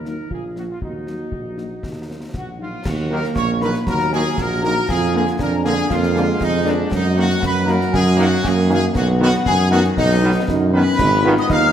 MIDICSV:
0, 0, Header, 1, 8, 480
1, 0, Start_track
1, 0, Key_signature, -6, "minor"
1, 0, Tempo, 508044
1, 776, Time_signature, 2, 2, 24, 8
1, 11077, End_track
2, 0, Start_track
2, 0, Title_t, "Flute section"
2, 0, Program_c, 0, 73
2, 2228, Note_on_c, 0, 78, 60
2, 2447, Note_off_c, 0, 78, 0
2, 2465, Note_on_c, 0, 77, 64
2, 2685, Note_off_c, 0, 77, 0
2, 2710, Note_on_c, 0, 78, 98
2, 2767, Note_off_c, 0, 78, 0
2, 2941, Note_on_c, 0, 82, 91
2, 2998, Note_off_c, 0, 82, 0
2, 3181, Note_on_c, 0, 85, 109
2, 3404, Note_off_c, 0, 85, 0
2, 3415, Note_on_c, 0, 83, 90
2, 3657, Note_off_c, 0, 83, 0
2, 3658, Note_on_c, 0, 82, 109
2, 3882, Note_off_c, 0, 82, 0
2, 3899, Note_on_c, 0, 80, 91
2, 4123, Note_off_c, 0, 80, 0
2, 4150, Note_on_c, 0, 82, 96
2, 4207, Note_off_c, 0, 82, 0
2, 4363, Note_on_c, 0, 82, 107
2, 4594, Note_off_c, 0, 82, 0
2, 4612, Note_on_c, 0, 80, 106
2, 4847, Note_off_c, 0, 80, 0
2, 4858, Note_on_c, 0, 80, 98
2, 5082, Note_off_c, 0, 80, 0
2, 5104, Note_on_c, 0, 82, 104
2, 5326, Note_on_c, 0, 80, 97
2, 5342, Note_off_c, 0, 82, 0
2, 5556, Note_off_c, 0, 80, 0
2, 5565, Note_on_c, 0, 77, 104
2, 6018, Note_off_c, 0, 77, 0
2, 6036, Note_on_c, 0, 75, 110
2, 6270, Note_off_c, 0, 75, 0
2, 6277, Note_on_c, 0, 74, 83
2, 6510, Note_off_c, 0, 74, 0
2, 6517, Note_on_c, 0, 75, 98
2, 6749, Note_on_c, 0, 78, 107
2, 6750, Note_off_c, 0, 75, 0
2, 6986, Note_off_c, 0, 78, 0
2, 7001, Note_on_c, 0, 83, 125
2, 7235, Note_on_c, 0, 82, 92
2, 7250, Note_off_c, 0, 83, 0
2, 7292, Note_off_c, 0, 82, 0
2, 7485, Note_on_c, 0, 80, 113
2, 7541, Note_off_c, 0, 80, 0
2, 7722, Note_on_c, 0, 78, 108
2, 7953, Note_off_c, 0, 78, 0
2, 7971, Note_on_c, 0, 80, 112
2, 8027, Note_off_c, 0, 80, 0
2, 8213, Note_on_c, 0, 80, 111
2, 8269, Note_off_c, 0, 80, 0
2, 8458, Note_on_c, 0, 78, 101
2, 8515, Note_off_c, 0, 78, 0
2, 8700, Note_on_c, 0, 78, 101
2, 8757, Note_off_c, 0, 78, 0
2, 8944, Note_on_c, 0, 80, 120
2, 9165, Note_off_c, 0, 80, 0
2, 9179, Note_on_c, 0, 78, 117
2, 9236, Note_off_c, 0, 78, 0
2, 9425, Note_on_c, 0, 75, 109
2, 9869, Note_off_c, 0, 75, 0
2, 10153, Note_on_c, 0, 83, 127
2, 10708, Note_off_c, 0, 83, 0
2, 10751, Note_on_c, 0, 87, 113
2, 10865, Note_off_c, 0, 87, 0
2, 10874, Note_on_c, 0, 89, 127
2, 11077, Note_off_c, 0, 89, 0
2, 11077, End_track
3, 0, Start_track
3, 0, Title_t, "Trumpet section"
3, 0, Program_c, 1, 61
3, 45, Note_on_c, 1, 70, 58
3, 273, Note_off_c, 1, 70, 0
3, 294, Note_on_c, 1, 68, 54
3, 402, Note_off_c, 1, 68, 0
3, 535, Note_on_c, 1, 66, 57
3, 589, Note_off_c, 1, 66, 0
3, 660, Note_on_c, 1, 65, 49
3, 713, Note_off_c, 1, 65, 0
3, 766, Note_on_c, 1, 63, 59
3, 2176, Note_off_c, 1, 63, 0
3, 2218, Note_on_c, 1, 66, 66
3, 2326, Note_off_c, 1, 66, 0
3, 2455, Note_on_c, 1, 65, 81
3, 2680, Note_off_c, 1, 65, 0
3, 2704, Note_on_c, 1, 66, 106
3, 2942, Note_off_c, 1, 66, 0
3, 2946, Note_on_c, 1, 70, 107
3, 3052, Note_off_c, 1, 70, 0
3, 3177, Note_on_c, 1, 73, 102
3, 3286, Note_off_c, 1, 73, 0
3, 3415, Note_on_c, 1, 71, 96
3, 3524, Note_off_c, 1, 71, 0
3, 3658, Note_on_c, 1, 70, 107
3, 3882, Note_off_c, 1, 70, 0
3, 3895, Note_on_c, 1, 68, 118
3, 4121, Note_off_c, 1, 68, 0
3, 4143, Note_on_c, 1, 70, 108
3, 4363, Note_off_c, 1, 70, 0
3, 4375, Note_on_c, 1, 70, 113
3, 4600, Note_off_c, 1, 70, 0
3, 4621, Note_on_c, 1, 68, 120
3, 4844, Note_off_c, 1, 68, 0
3, 4859, Note_on_c, 1, 68, 103
3, 4967, Note_off_c, 1, 68, 0
3, 5098, Note_on_c, 1, 70, 108
3, 5207, Note_off_c, 1, 70, 0
3, 5342, Note_on_c, 1, 68, 118
3, 5564, Note_off_c, 1, 68, 0
3, 5586, Note_on_c, 1, 65, 112
3, 6063, Note_off_c, 1, 65, 0
3, 6072, Note_on_c, 1, 63, 115
3, 6289, Note_off_c, 1, 63, 0
3, 6313, Note_on_c, 1, 62, 99
3, 6546, Note_off_c, 1, 62, 0
3, 6554, Note_on_c, 1, 63, 111
3, 6770, Note_off_c, 1, 63, 0
3, 6785, Note_on_c, 1, 66, 117
3, 7006, Note_off_c, 1, 66, 0
3, 7031, Note_on_c, 1, 71, 118
3, 7249, Note_off_c, 1, 71, 0
3, 7261, Note_on_c, 1, 70, 112
3, 7500, Note_off_c, 1, 70, 0
3, 7500, Note_on_c, 1, 68, 127
3, 7723, Note_off_c, 1, 68, 0
3, 7740, Note_on_c, 1, 66, 127
3, 7980, Note_off_c, 1, 66, 0
3, 7981, Note_on_c, 1, 68, 118
3, 8220, Note_off_c, 1, 68, 0
3, 8231, Note_on_c, 1, 68, 127
3, 8336, Note_off_c, 1, 68, 0
3, 8451, Note_on_c, 1, 66, 110
3, 8561, Note_off_c, 1, 66, 0
3, 8699, Note_on_c, 1, 66, 127
3, 8807, Note_off_c, 1, 66, 0
3, 8926, Note_on_c, 1, 68, 126
3, 9156, Note_off_c, 1, 68, 0
3, 9170, Note_on_c, 1, 66, 127
3, 9280, Note_off_c, 1, 66, 0
3, 9421, Note_on_c, 1, 63, 127
3, 9867, Note_off_c, 1, 63, 0
3, 10128, Note_on_c, 1, 71, 127
3, 10696, Note_off_c, 1, 71, 0
3, 10747, Note_on_c, 1, 75, 122
3, 10799, Note_off_c, 1, 75, 0
3, 10865, Note_on_c, 1, 77, 127
3, 11077, Note_off_c, 1, 77, 0
3, 11077, End_track
4, 0, Start_track
4, 0, Title_t, "Euphonium"
4, 0, Program_c, 2, 58
4, 0, Note_on_c, 2, 63, 51
4, 259, Note_off_c, 2, 63, 0
4, 291, Note_on_c, 2, 65, 56
4, 740, Note_off_c, 2, 65, 0
4, 771, Note_on_c, 2, 66, 55
4, 2418, Note_off_c, 2, 66, 0
4, 2702, Note_on_c, 2, 58, 103
4, 3623, Note_off_c, 2, 58, 0
4, 3657, Note_on_c, 2, 54, 87
4, 4137, Note_on_c, 2, 66, 102
4, 4151, Note_off_c, 2, 54, 0
4, 4612, Note_off_c, 2, 66, 0
4, 4618, Note_on_c, 2, 65, 108
4, 5065, Note_off_c, 2, 65, 0
4, 5102, Note_on_c, 2, 62, 101
4, 5584, Note_on_c, 2, 58, 95
4, 5598, Note_off_c, 2, 62, 0
4, 5807, Note_off_c, 2, 58, 0
4, 5812, Note_on_c, 2, 56, 104
4, 6534, Note_on_c, 2, 54, 109
4, 6548, Note_off_c, 2, 56, 0
4, 7982, Note_on_c, 2, 58, 112
4, 7996, Note_off_c, 2, 54, 0
4, 8447, Note_off_c, 2, 58, 0
4, 8452, Note_on_c, 2, 59, 116
4, 9594, Note_off_c, 2, 59, 0
4, 9907, Note_on_c, 2, 63, 116
4, 10132, Note_on_c, 2, 61, 118
4, 10146, Note_off_c, 2, 63, 0
4, 10368, Note_off_c, 2, 61, 0
4, 10374, Note_on_c, 2, 63, 106
4, 10483, Note_off_c, 2, 63, 0
4, 10612, Note_on_c, 2, 65, 120
4, 10722, Note_off_c, 2, 65, 0
4, 10862, Note_on_c, 2, 63, 127
4, 11077, Note_off_c, 2, 63, 0
4, 11077, End_track
5, 0, Start_track
5, 0, Title_t, "French horn section"
5, 0, Program_c, 3, 60
5, 53, Note_on_c, 3, 54, 41
5, 57, Note_on_c, 3, 58, 40
5, 57, Note_on_c, 3, 63, 37
5, 140, Note_off_c, 3, 54, 0
5, 143, Note_off_c, 3, 58, 0
5, 143, Note_off_c, 3, 63, 0
5, 525, Note_on_c, 3, 53, 37
5, 527, Note_on_c, 3, 62, 38
5, 528, Note_on_c, 3, 58, 37
5, 614, Note_off_c, 3, 53, 0
5, 615, Note_off_c, 3, 62, 0
5, 616, Note_off_c, 3, 58, 0
5, 1003, Note_on_c, 3, 58, 37
5, 1005, Note_on_c, 3, 54, 37
5, 1007, Note_on_c, 3, 63, 40
5, 1093, Note_off_c, 3, 58, 0
5, 1094, Note_off_c, 3, 54, 0
5, 1096, Note_off_c, 3, 63, 0
5, 1478, Note_on_c, 3, 63, 36
5, 1480, Note_on_c, 3, 58, 34
5, 1483, Note_on_c, 3, 54, 39
5, 1569, Note_off_c, 3, 63, 0
5, 1570, Note_off_c, 3, 58, 0
5, 1573, Note_off_c, 3, 54, 0
5, 1963, Note_on_c, 3, 58, 36
5, 1964, Note_on_c, 3, 63, 35
5, 1965, Note_on_c, 3, 54, 35
5, 2053, Note_off_c, 3, 58, 0
5, 2054, Note_off_c, 3, 54, 0
5, 2054, Note_off_c, 3, 63, 0
5, 2449, Note_on_c, 3, 63, 37
5, 2451, Note_on_c, 3, 58, 36
5, 2454, Note_on_c, 3, 54, 38
5, 2538, Note_off_c, 3, 63, 0
5, 2539, Note_off_c, 3, 58, 0
5, 2542, Note_off_c, 3, 54, 0
5, 2931, Note_on_c, 3, 54, 71
5, 2933, Note_on_c, 3, 63, 75
5, 2934, Note_on_c, 3, 58, 68
5, 3019, Note_off_c, 3, 54, 0
5, 3021, Note_off_c, 3, 63, 0
5, 3022, Note_off_c, 3, 58, 0
5, 3415, Note_on_c, 3, 58, 77
5, 3417, Note_on_c, 3, 63, 74
5, 3418, Note_on_c, 3, 54, 74
5, 3503, Note_off_c, 3, 58, 0
5, 3504, Note_off_c, 3, 63, 0
5, 3505, Note_off_c, 3, 54, 0
5, 3895, Note_on_c, 3, 54, 73
5, 3898, Note_on_c, 3, 63, 68
5, 3902, Note_on_c, 3, 58, 74
5, 3982, Note_off_c, 3, 54, 0
5, 3985, Note_off_c, 3, 63, 0
5, 3988, Note_off_c, 3, 58, 0
5, 4377, Note_on_c, 3, 58, 80
5, 4378, Note_on_c, 3, 54, 75
5, 4380, Note_on_c, 3, 63, 75
5, 4464, Note_off_c, 3, 58, 0
5, 4465, Note_off_c, 3, 54, 0
5, 4466, Note_off_c, 3, 63, 0
5, 4862, Note_on_c, 3, 58, 75
5, 4866, Note_off_c, 3, 58, 0
5, 4866, Note_on_c, 3, 58, 70
5, 4866, Note_on_c, 3, 62, 74
5, 4951, Note_off_c, 3, 58, 0
5, 4951, Note_off_c, 3, 62, 0
5, 5333, Note_on_c, 3, 58, 78
5, 5338, Note_on_c, 3, 62, 78
5, 5339, Note_off_c, 3, 58, 0
5, 5339, Note_on_c, 3, 58, 70
5, 5424, Note_off_c, 3, 62, 0
5, 5425, Note_off_c, 3, 58, 0
5, 5807, Note_on_c, 3, 58, 70
5, 5813, Note_on_c, 3, 62, 70
5, 5817, Note_off_c, 3, 58, 0
5, 5817, Note_on_c, 3, 58, 77
5, 5901, Note_off_c, 3, 62, 0
5, 5904, Note_off_c, 3, 58, 0
5, 6283, Note_on_c, 3, 58, 80
5, 6286, Note_on_c, 3, 62, 75
5, 6287, Note_off_c, 3, 58, 0
5, 6287, Note_on_c, 3, 58, 83
5, 6375, Note_off_c, 3, 62, 0
5, 6377, Note_off_c, 3, 58, 0
5, 6773, Note_on_c, 3, 63, 86
5, 6775, Note_on_c, 3, 54, 77
5, 6775, Note_on_c, 3, 58, 86
5, 6861, Note_off_c, 3, 63, 0
5, 6862, Note_off_c, 3, 54, 0
5, 6862, Note_off_c, 3, 58, 0
5, 7248, Note_on_c, 3, 63, 82
5, 7250, Note_on_c, 3, 58, 87
5, 7253, Note_on_c, 3, 54, 87
5, 7337, Note_off_c, 3, 63, 0
5, 7338, Note_off_c, 3, 58, 0
5, 7341, Note_off_c, 3, 54, 0
5, 7732, Note_on_c, 3, 58, 84
5, 7736, Note_on_c, 3, 54, 80
5, 7737, Note_on_c, 3, 63, 77
5, 7820, Note_off_c, 3, 58, 0
5, 7823, Note_off_c, 3, 54, 0
5, 7824, Note_off_c, 3, 63, 0
5, 8222, Note_on_c, 3, 63, 84
5, 8226, Note_on_c, 3, 54, 78
5, 8227, Note_on_c, 3, 58, 83
5, 8308, Note_off_c, 3, 63, 0
5, 8311, Note_off_c, 3, 54, 0
5, 8312, Note_off_c, 3, 58, 0
5, 8704, Note_on_c, 3, 63, 86
5, 8705, Note_on_c, 3, 59, 82
5, 8706, Note_on_c, 3, 54, 86
5, 8789, Note_off_c, 3, 63, 0
5, 8790, Note_off_c, 3, 59, 0
5, 8791, Note_off_c, 3, 54, 0
5, 9173, Note_on_c, 3, 63, 90
5, 9175, Note_on_c, 3, 59, 88
5, 9181, Note_on_c, 3, 54, 92
5, 9261, Note_off_c, 3, 63, 0
5, 9262, Note_off_c, 3, 59, 0
5, 9267, Note_off_c, 3, 54, 0
5, 9663, Note_on_c, 3, 59, 92
5, 9668, Note_on_c, 3, 63, 95
5, 9669, Note_on_c, 3, 54, 87
5, 9749, Note_off_c, 3, 59, 0
5, 9753, Note_off_c, 3, 54, 0
5, 9753, Note_off_c, 3, 63, 0
5, 10140, Note_on_c, 3, 63, 85
5, 10141, Note_on_c, 3, 54, 88
5, 10144, Note_on_c, 3, 59, 93
5, 10226, Note_off_c, 3, 63, 0
5, 10227, Note_off_c, 3, 54, 0
5, 10229, Note_off_c, 3, 59, 0
5, 10613, Note_on_c, 3, 56, 94
5, 10615, Note_on_c, 3, 59, 96
5, 10615, Note_on_c, 3, 63, 99
5, 10701, Note_off_c, 3, 56, 0
5, 10702, Note_off_c, 3, 59, 0
5, 10702, Note_off_c, 3, 63, 0
5, 11077, End_track
6, 0, Start_track
6, 0, Title_t, "Trombone section"
6, 0, Program_c, 4, 61
6, 2920, Note_on_c, 4, 58, 92
6, 2926, Note_on_c, 4, 51, 91
6, 3010, Note_off_c, 4, 58, 0
6, 3014, Note_off_c, 4, 51, 0
6, 3412, Note_on_c, 4, 58, 78
6, 3415, Note_on_c, 4, 51, 84
6, 3498, Note_off_c, 4, 58, 0
6, 3500, Note_off_c, 4, 51, 0
6, 3897, Note_on_c, 4, 58, 89
6, 3899, Note_on_c, 4, 51, 91
6, 3981, Note_off_c, 4, 58, 0
6, 3983, Note_off_c, 4, 51, 0
6, 4365, Note_on_c, 4, 58, 81
6, 4367, Note_on_c, 4, 51, 80
6, 4454, Note_off_c, 4, 58, 0
6, 4455, Note_off_c, 4, 51, 0
6, 4849, Note_on_c, 4, 50, 96
6, 4853, Note_on_c, 4, 58, 92
6, 4936, Note_off_c, 4, 50, 0
6, 4939, Note_off_c, 4, 58, 0
6, 5335, Note_on_c, 4, 50, 92
6, 5338, Note_on_c, 4, 58, 89
6, 5420, Note_off_c, 4, 50, 0
6, 5422, Note_off_c, 4, 58, 0
6, 5807, Note_on_c, 4, 50, 100
6, 5807, Note_on_c, 4, 58, 91
6, 5895, Note_off_c, 4, 50, 0
6, 5895, Note_off_c, 4, 58, 0
6, 6277, Note_on_c, 4, 58, 80
6, 6279, Note_on_c, 4, 50, 84
6, 6368, Note_off_c, 4, 58, 0
6, 6370, Note_off_c, 4, 50, 0
6, 6764, Note_on_c, 4, 58, 92
6, 6768, Note_on_c, 4, 51, 97
6, 6853, Note_off_c, 4, 58, 0
6, 6856, Note_off_c, 4, 51, 0
6, 7216, Note_on_c, 4, 58, 92
6, 7226, Note_on_c, 4, 51, 88
6, 7315, Note_off_c, 4, 58, 0
6, 7321, Note_off_c, 4, 51, 0
6, 7709, Note_on_c, 4, 51, 109
6, 7711, Note_on_c, 4, 58, 107
6, 7803, Note_off_c, 4, 51, 0
6, 7805, Note_off_c, 4, 58, 0
6, 8201, Note_on_c, 4, 51, 94
6, 8212, Note_on_c, 4, 58, 94
6, 8291, Note_off_c, 4, 51, 0
6, 8298, Note_off_c, 4, 58, 0
6, 8682, Note_on_c, 4, 51, 102
6, 8691, Note_on_c, 4, 59, 106
6, 8772, Note_off_c, 4, 51, 0
6, 8778, Note_off_c, 4, 59, 0
6, 9161, Note_on_c, 4, 51, 101
6, 9165, Note_on_c, 4, 59, 90
6, 9251, Note_off_c, 4, 51, 0
6, 9254, Note_off_c, 4, 59, 0
6, 9653, Note_on_c, 4, 51, 112
6, 9655, Note_on_c, 4, 59, 106
6, 9739, Note_off_c, 4, 51, 0
6, 9740, Note_off_c, 4, 59, 0
6, 10131, Note_on_c, 4, 59, 97
6, 10135, Note_on_c, 4, 51, 105
6, 10217, Note_off_c, 4, 59, 0
6, 10220, Note_off_c, 4, 51, 0
6, 10622, Note_on_c, 4, 59, 109
6, 10623, Note_on_c, 4, 51, 121
6, 10704, Note_off_c, 4, 59, 0
6, 10705, Note_off_c, 4, 51, 0
6, 11077, End_track
7, 0, Start_track
7, 0, Title_t, "Tuba"
7, 0, Program_c, 5, 58
7, 0, Note_on_c, 5, 39, 59
7, 211, Note_off_c, 5, 39, 0
7, 288, Note_on_c, 5, 34, 50
7, 692, Note_off_c, 5, 34, 0
7, 773, Note_on_c, 5, 39, 53
7, 1175, Note_off_c, 5, 39, 0
7, 1256, Note_on_c, 5, 34, 49
7, 1657, Note_off_c, 5, 34, 0
7, 1739, Note_on_c, 5, 39, 50
7, 2139, Note_off_c, 5, 39, 0
7, 2211, Note_on_c, 5, 34, 59
7, 2615, Note_off_c, 5, 34, 0
7, 2697, Note_on_c, 5, 39, 102
7, 3098, Note_off_c, 5, 39, 0
7, 3174, Note_on_c, 5, 34, 94
7, 3539, Note_off_c, 5, 34, 0
7, 3660, Note_on_c, 5, 39, 95
7, 4060, Note_off_c, 5, 39, 0
7, 4139, Note_on_c, 5, 34, 99
7, 4539, Note_off_c, 5, 34, 0
7, 4615, Note_on_c, 5, 41, 100
7, 5017, Note_off_c, 5, 41, 0
7, 5100, Note_on_c, 5, 41, 101
7, 5500, Note_off_c, 5, 41, 0
7, 5579, Note_on_c, 5, 41, 107
7, 5979, Note_off_c, 5, 41, 0
7, 6057, Note_on_c, 5, 41, 102
7, 6458, Note_off_c, 5, 41, 0
7, 6535, Note_on_c, 5, 42, 108
7, 6937, Note_off_c, 5, 42, 0
7, 7019, Note_on_c, 5, 42, 99
7, 7419, Note_off_c, 5, 42, 0
7, 7496, Note_on_c, 5, 42, 117
7, 7898, Note_off_c, 5, 42, 0
7, 7978, Note_on_c, 5, 42, 117
7, 8379, Note_off_c, 5, 42, 0
7, 8464, Note_on_c, 5, 35, 117
7, 8862, Note_off_c, 5, 35, 0
7, 8939, Note_on_c, 5, 42, 110
7, 9339, Note_off_c, 5, 42, 0
7, 9420, Note_on_c, 5, 35, 123
7, 9819, Note_off_c, 5, 35, 0
7, 9902, Note_on_c, 5, 42, 116
7, 10258, Note_off_c, 5, 42, 0
7, 10378, Note_on_c, 5, 32, 123
7, 10778, Note_off_c, 5, 32, 0
7, 10859, Note_on_c, 5, 39, 111
7, 11077, Note_off_c, 5, 39, 0
7, 11077, End_track
8, 0, Start_track
8, 0, Title_t, "Drums"
8, 50, Note_on_c, 9, 38, 32
8, 145, Note_off_c, 9, 38, 0
8, 291, Note_on_c, 9, 35, 59
8, 385, Note_off_c, 9, 35, 0
8, 531, Note_on_c, 9, 38, 30
8, 626, Note_off_c, 9, 38, 0
8, 771, Note_on_c, 9, 35, 67
8, 866, Note_off_c, 9, 35, 0
8, 1013, Note_on_c, 9, 38, 34
8, 1108, Note_off_c, 9, 38, 0
8, 1246, Note_on_c, 9, 35, 63
8, 1341, Note_off_c, 9, 35, 0
8, 1491, Note_on_c, 9, 38, 29
8, 1586, Note_off_c, 9, 38, 0
8, 1731, Note_on_c, 9, 35, 69
8, 1731, Note_on_c, 9, 38, 50
8, 1825, Note_off_c, 9, 35, 0
8, 1825, Note_off_c, 9, 38, 0
8, 2211, Note_on_c, 9, 35, 61
8, 2211, Note_on_c, 9, 38, 45
8, 2306, Note_off_c, 9, 35, 0
8, 2306, Note_off_c, 9, 38, 0
8, 2697, Note_on_c, 9, 35, 91
8, 2697, Note_on_c, 9, 38, 89
8, 2697, Note_on_c, 9, 49, 66
8, 2792, Note_off_c, 9, 35, 0
8, 2792, Note_off_c, 9, 38, 0
8, 2792, Note_off_c, 9, 49, 0
8, 3058, Note_on_c, 9, 38, 56
8, 3152, Note_off_c, 9, 38, 0
8, 3172, Note_on_c, 9, 35, 83
8, 3172, Note_on_c, 9, 38, 82
8, 3267, Note_off_c, 9, 35, 0
8, 3267, Note_off_c, 9, 38, 0
8, 3415, Note_on_c, 9, 38, 58
8, 3509, Note_off_c, 9, 38, 0
8, 3534, Note_on_c, 9, 38, 58
8, 3628, Note_off_c, 9, 38, 0
8, 3654, Note_on_c, 9, 35, 94
8, 3654, Note_on_c, 9, 38, 79
8, 3749, Note_off_c, 9, 35, 0
8, 3749, Note_off_c, 9, 38, 0
8, 3777, Note_on_c, 9, 38, 56
8, 3871, Note_off_c, 9, 38, 0
8, 3900, Note_on_c, 9, 38, 62
8, 3995, Note_off_c, 9, 38, 0
8, 4137, Note_on_c, 9, 35, 80
8, 4137, Note_on_c, 9, 38, 75
8, 4231, Note_off_c, 9, 35, 0
8, 4231, Note_off_c, 9, 38, 0
8, 4379, Note_on_c, 9, 38, 55
8, 4474, Note_off_c, 9, 38, 0
8, 4618, Note_on_c, 9, 35, 93
8, 4618, Note_on_c, 9, 38, 86
8, 4618, Note_on_c, 9, 49, 36
8, 4713, Note_off_c, 9, 35, 0
8, 4713, Note_off_c, 9, 38, 0
8, 4713, Note_off_c, 9, 49, 0
8, 4979, Note_on_c, 9, 38, 61
8, 5073, Note_off_c, 9, 38, 0
8, 5095, Note_on_c, 9, 35, 85
8, 5095, Note_on_c, 9, 38, 84
8, 5190, Note_off_c, 9, 35, 0
8, 5190, Note_off_c, 9, 38, 0
8, 5341, Note_on_c, 9, 38, 56
8, 5436, Note_off_c, 9, 38, 0
8, 5457, Note_on_c, 9, 38, 60
8, 5551, Note_off_c, 9, 38, 0
8, 5576, Note_on_c, 9, 35, 89
8, 5576, Note_on_c, 9, 38, 78
8, 5670, Note_off_c, 9, 35, 0
8, 5670, Note_off_c, 9, 38, 0
8, 5697, Note_on_c, 9, 38, 60
8, 5792, Note_off_c, 9, 38, 0
8, 5818, Note_on_c, 9, 38, 58
8, 5912, Note_off_c, 9, 38, 0
8, 6054, Note_on_c, 9, 35, 84
8, 6054, Note_on_c, 9, 38, 81
8, 6148, Note_off_c, 9, 35, 0
8, 6148, Note_off_c, 9, 38, 0
8, 6295, Note_on_c, 9, 38, 56
8, 6390, Note_off_c, 9, 38, 0
8, 6534, Note_on_c, 9, 35, 93
8, 6534, Note_on_c, 9, 38, 84
8, 6534, Note_on_c, 9, 49, 38
8, 6628, Note_off_c, 9, 35, 0
8, 6628, Note_off_c, 9, 38, 0
8, 6628, Note_off_c, 9, 49, 0
8, 6893, Note_on_c, 9, 38, 58
8, 6988, Note_off_c, 9, 38, 0
8, 7017, Note_on_c, 9, 35, 84
8, 7017, Note_on_c, 9, 38, 84
8, 7112, Note_off_c, 9, 35, 0
8, 7112, Note_off_c, 9, 38, 0
8, 7257, Note_on_c, 9, 38, 58
8, 7351, Note_off_c, 9, 38, 0
8, 7379, Note_on_c, 9, 38, 59
8, 7474, Note_off_c, 9, 38, 0
8, 7502, Note_on_c, 9, 35, 97
8, 7502, Note_on_c, 9, 38, 83
8, 7596, Note_off_c, 9, 35, 0
8, 7596, Note_off_c, 9, 38, 0
8, 7623, Note_on_c, 9, 38, 53
8, 7718, Note_off_c, 9, 38, 0
8, 7740, Note_on_c, 9, 38, 57
8, 7835, Note_off_c, 9, 38, 0
8, 7978, Note_on_c, 9, 35, 86
8, 7978, Note_on_c, 9, 38, 82
8, 8073, Note_off_c, 9, 35, 0
8, 8073, Note_off_c, 9, 38, 0
8, 8223, Note_on_c, 9, 38, 59
8, 8317, Note_off_c, 9, 38, 0
8, 8456, Note_on_c, 9, 35, 97
8, 8456, Note_on_c, 9, 38, 86
8, 8456, Note_on_c, 9, 49, 35
8, 8551, Note_off_c, 9, 35, 0
8, 8551, Note_off_c, 9, 38, 0
8, 8551, Note_off_c, 9, 49, 0
8, 8819, Note_on_c, 9, 38, 58
8, 8914, Note_off_c, 9, 38, 0
8, 8937, Note_on_c, 9, 35, 84
8, 8937, Note_on_c, 9, 38, 80
8, 9032, Note_off_c, 9, 35, 0
8, 9032, Note_off_c, 9, 38, 0
8, 9178, Note_on_c, 9, 38, 55
8, 9272, Note_off_c, 9, 38, 0
8, 9299, Note_on_c, 9, 38, 53
8, 9394, Note_off_c, 9, 38, 0
8, 9420, Note_on_c, 9, 35, 101
8, 9420, Note_on_c, 9, 38, 79
8, 9514, Note_off_c, 9, 35, 0
8, 9514, Note_off_c, 9, 38, 0
8, 9903, Note_on_c, 9, 35, 87
8, 9903, Note_on_c, 9, 38, 81
8, 9997, Note_off_c, 9, 35, 0
8, 9997, Note_off_c, 9, 38, 0
8, 10385, Note_on_c, 9, 35, 99
8, 10385, Note_on_c, 9, 38, 94
8, 10385, Note_on_c, 9, 49, 69
8, 10479, Note_off_c, 9, 35, 0
8, 10479, Note_off_c, 9, 38, 0
8, 10479, Note_off_c, 9, 49, 0
8, 10743, Note_on_c, 9, 38, 59
8, 10837, Note_off_c, 9, 38, 0
8, 10864, Note_on_c, 9, 35, 91
8, 10864, Note_on_c, 9, 38, 93
8, 10958, Note_off_c, 9, 35, 0
8, 10958, Note_off_c, 9, 38, 0
8, 11077, End_track
0, 0, End_of_file